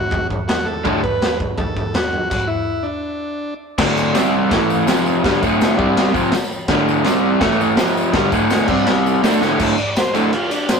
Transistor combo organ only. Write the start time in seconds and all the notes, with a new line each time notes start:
Already playing: F#4
0.48 F#4
0.66 A4
1.03 B4
1.58 A4
1.95 F#4
2.30 F#4
2.47 E4
2.83 D4
9.73 C#5
9.78 D5
9.98 C5
10.16 A4
10.33 F4
10.51 D4
10.71 C4